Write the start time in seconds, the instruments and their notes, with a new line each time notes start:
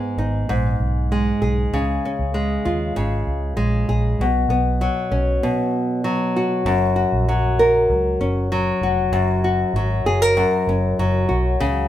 Already playing: nylon-string guitar G#2 G#3 B3 G#4
0.17 fingered electric bass G#1, nylon-string guitar D#4
0.49 fingered electric bass A#1, nylon-string guitar G#2
0.80 fingered electric bass B1
1.12 nylon-string guitar G#3
1.42 fingered electric bass B1, nylon-string guitar G#4
1.72 fingered electric bass C#2, nylon-string guitar C#3
2.05 nylon-string guitar C#4
2.19 fingered electric bass C#2
2.34 nylon-string guitar G#3
2.65 fingered electric bass D#2, nylon-string guitar F4
2.96 fingered electric bass G#1, nylon-string guitar C#3
3.27 fingered electric bass C#2
3.57 fingered electric bass A#1, nylon-string guitar G#3
3.88 fingered electric bass A#1, nylon-string guitar G#4
4.19 fingered electric bass B1, nylon-string guitar B2
4.49 fingered electric bass B1, nylon-string guitar B3
4.81 nylon-string guitar F#3
5.11 fingered electric bass B1, nylon-string guitar C#4
5.43 nylon-string guitar B2
6.04 nylon-string guitar F#3
6.36 nylon-string guitar F#4
6.65 fingered electric bass F#1, nylon-string guitar F#2
6.96 nylon-string guitar F#4
7.12 fingered electric bass A#1
7.29 nylon-string guitar F#3
7.59 nylon-string guitar A#4
7.90 fingered electric bass C#2
8.20 fingered electric bass F#1, nylon-string guitar C#4
8.52 nylon-string guitar F#3
8.81 fingered electric bass F1, nylon-string guitar F#4
9.12 fingered electric bass F#1, nylon-string guitar F#2
9.44 nylon-string guitar F#4
9.73 fingered electric bass G#1, nylon-string guitar F#3
10.04 fingered electric bass F#1, nylon-string guitar G#4
10.22 nylon-string guitar A#4
10.37 nylon-string guitar F#2
10.67 fingered electric bass F#1, nylon-string guitar C#4
10.99 fingered electric bass F#1, nylon-string guitar F#3
11.29 fingered electric bass B1, nylon-string guitar F#4
11.60 fingered electric bass C#2, nylon-string guitar C#3